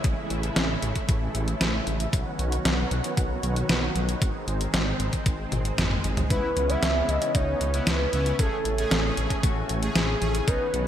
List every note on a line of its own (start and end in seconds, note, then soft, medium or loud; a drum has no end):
0.00 2.09 C#3 medium
0.00 2.09 G#3 medium
0.00 2.09 E4 medium
0.04 0.14 A1 loud
0.04 2.11 E3 medium
0.04 2.11 A3 medium
0.04 kick loud
0.04 closed hi-hat medium
0.30 0.50 A1 medium
0.30 closed hi-hat medium
0.43 closed hi-hat medium
0.56 0.76 A1 medium
0.56 snare loud
0.56 closed hi-hat medium
0.82 0.92 A1 medium
0.82 closed hi-hat medium
0.95 kick medium
0.95 closed hi-hat medium
1.09 1.28 A1 loud
1.09 kick loud
1.09 closed hi-hat medium
1.35 1.55 A1 medium
1.35 closed hi-hat medium
1.48 closed hi-hat medium
1.61 1.81 A1 medium
1.61 snare loud
1.61 closed hi-hat medium
1.87 2.07 A1 loud
1.87 closed hi-hat medium
2.00 closed hi-hat medium
2.13 2.23 B1 loud
2.13 6.27 D#3 medium
2.13 4.20 F#3 medium
2.13 4.20 B3 medium
2.13 4.20 C#4 medium
2.13 4.20 F#4 medium
2.13 kick loud
2.13 closed hi-hat medium
2.39 2.59 B1 medium
2.39 closed hi-hat medium
2.52 closed hi-hat medium
2.65 2.85 B1 medium
2.65 snare loud
2.65 closed hi-hat medium
2.91 3.01 B1 medium
2.91 closed hi-hat medium
3.04 closed hi-hat medium
3.17 3.37 B1 loud
3.17 kick loud
3.17 closed hi-hat medium
3.43 3.63 B1 medium
3.43 closed hi-hat medium
3.56 closed hi-hat medium
3.69 3.89 B1 medium
3.69 snare loud
3.69 closed hi-hat medium
3.95 4.15 B1 loud
3.95 closed hi-hat medium
4.09 closed hi-hat medium
4.22 4.32 G#1 loud
4.22 8.35 G#3 medium
4.22 6.28 C4 medium
4.22 kick loud
4.22 closed hi-hat medium
4.48 4.67 G#1 medium
4.48 closed hi-hat medium
4.61 closed hi-hat medium
4.74 4.94 G#1 medium
4.74 snare loud
4.74 closed hi-hat medium
5.00 5.10 G#1 medium
5.00 closed hi-hat medium
5.13 kick medium
5.13 closed hi-hat medium
5.26 5.46 G#1 medium
5.26 kick loud
5.26 closed hi-hat medium
5.52 5.72 G#1 medium
5.52 closed hi-hat medium
5.52 high tom medium
5.65 closed hi-hat medium
5.78 5.98 G#1 medium
5.78 snare loud
5.78 closed hi-hat medium
5.78 mid tom medium
5.91 mid tom medium
6.04 6.24 G#1 loud
6.04 closed hi-hat medium
6.17 closed hi-hat medium
6.17 mid tom medium
6.30 6.40 C#2 loud
6.30 10.44 C#3 medium
6.30 10.44 E3 medium
6.30 6.49 B3 medium
6.30 8.37 B3 medium
6.30 6.49 C#4 medium
6.30 10.44 C#4 medium
6.30 6.49 E4 loud
6.30 6.71 B4 loud
6.30 kick loud
6.30 closed hi-hat medium
6.57 6.76 C#2 medium
6.57 closed hi-hat medium
6.70 6.93 B3 medium
6.70 6.93 C#4 medium
6.70 6.93 E4 loud
6.70 7.11 E5 loud
6.70 closed hi-hat medium
6.83 7.02 C#2 medium
6.83 snare loud
6.83 closed hi-hat medium
6.96 7.32 B3 medium
6.96 7.32 C#4 medium
6.96 7.32 E4 loud
7.09 7.19 C#2 medium
7.09 7.37 D#5 loud
7.09 closed hi-hat medium
7.22 closed hi-hat medium
7.35 7.55 C#2 loud
7.35 7.71 B3 medium
7.35 7.71 C#4 medium
7.35 7.71 D#4 medium
7.35 7.89 C#5 loud
7.35 kick loud
7.35 closed hi-hat medium
7.61 7.81 C#2 medium
7.61 closed hi-hat medium
7.74 8.10 B3 medium
7.74 8.10 C#4 medium
7.74 8.10 E4 loud
7.74 closed hi-hat medium
7.87 8.07 C#2 medium
7.87 8.39 B4 loud
7.87 snare loud
7.87 closed hi-hat medium
8.13 8.33 C#2 loud
8.13 8.36 B3 medium
8.13 8.36 C#4 medium
8.13 8.36 E4 loud
8.13 closed hi-hat medium
8.26 closed hi-hat medium
8.39 8.49 A1 loud
8.39 8.58 A3 medium
8.39 10.46 A3 medium
8.39 8.58 C#4 medium
8.39 8.58 G#4 medium
8.39 9.13 A4 loud
8.39 10.46 G#5 medium
8.39 kick loud
8.39 closed hi-hat medium
8.65 8.85 A1 medium
8.65 closed hi-hat medium
8.78 9.01 A3 medium
8.78 9.01 C#4 medium
8.78 9.01 G#4 loud
8.78 closed hi-hat medium
8.91 9.11 A1 medium
8.91 snare loud
8.91 closed hi-hat loud
9.04 9.40 A3 medium
9.04 9.40 C#4 medium
9.04 9.40 G#4 medium
9.17 9.27 A1 medium
9.17 closed hi-hat medium
9.30 kick medium
9.30 closed hi-hat medium
9.43 9.63 A1 loud
9.43 9.79 A3 medium
9.43 9.80 C#4 medium
9.43 9.80 F#4 medium
9.43 kick loud
9.43 closed hi-hat medium
9.69 9.89 A1 medium
9.69 closed hi-hat medium
9.83 10.19 A3 medium
9.83 10.19 C#4 medium
9.83 10.19 G#4 loud
9.83 closed hi-hat medium
9.96 10.15 A1 medium
9.96 10.49 G#4 medium
9.96 snare loud
9.96 closed hi-hat medium
10.22 10.41 A1 loud
10.22 10.45 A3 loud
10.22 10.45 C#4 medium
10.22 10.45 G#4 loud
10.22 closed hi-hat medium
10.35 closed hi-hat medium
10.48 10.58 B1 loud
10.48 10.88 D#3 medium
10.48 10.88 F#3 medium
10.48 10.66 B3 medium
10.48 10.88 B3 medium
10.48 10.88 C#4 medium
10.48 10.66 C#4 medium
10.48 10.66 D#4 loud
10.48 10.88 F#4 medium
10.48 10.88 B4 loud
10.48 kick loud
10.48 closed hi-hat medium
10.74 10.88 B1 medium
10.74 closed hi-hat medium